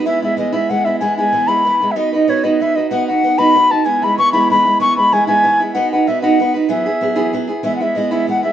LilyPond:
<<
  \new Staff \with { instrumentName = "Flute" } { \time 6/8 \key e \major \tempo 4. = 127 e''8 e''8 dis''8 e''8 fis''8 e''8 | gis''8 gis''4 b''4~ b''16. e''32 | dis''8 dis''8 cis''8 dis''8 e''8 dis''8 | fis''8 fis''4 b''4 a''8 |
gis''8 b''8 cis'''8 b''8 b''4 | cis'''8 b''8 gis''8 gis''4~ gis''32 r16. | fis''8 fis''8 e''8 fis''4 r8 | e''2~ e''8 r8 |
e''16. fis''32 e''8 dis''8 e''8 fis''8 e''8 | }
  \new Staff \with { instrumentName = "Steel-string acoustic guitar" } { \time 6/8 \key e \major <e gis b e'>8 <gis b e'>8 <e gis b e'>8 <e gis b e'>8 <e gis b e'>8 <gis b e'>8 | <e gis b e'>8 <gis b e'>8 <e gis b e'>8 <e gis b e'>8 <e gis b e'>8 <gis b e'>8 | <b dis' fis' b'>8 <dis' fis' b'>8 <b dis' fis' b'>8 <b dis' fis' b'>8 <b dis' fis' b'>8 <dis' fis' b'>8 | <b dis' fis' b'>8 <dis' fis' b'>8 <b dis' fis' b'>8 <b dis' fis' b'>8 <b dis' fis' b'>8 <dis' fis' b'>8 |
<e gis b e'>8 <gis b e'>8 <e gis b e'>8 <e gis b e'>8 <e gis b e'>8 <gis b e'>8 | <e gis b e'>8 <gis b e'>8 <e gis b e'>8 <e gis b e'>8 <e gis b e'>8 <gis b e'>8 | <b dis' fis' b'>8 <dis' fis' b'>8 <b dis' fis' b'>8 <b dis' fis' b'>8 <b dis' fis' b'>8 <dis' fis' b'>8 | <e fis b e' gis'>8 <b e' gis'>8 <fis b e' gis'>8 <e fis b e' gis'>8 <fis b e' gis'>8 <b e' gis'>8 |
<e gis b e'>8 <gis b e'>8 <e gis b e'>8 <e gis b e'>8 <e gis b e'>8 <gis b e'>8 | }
>>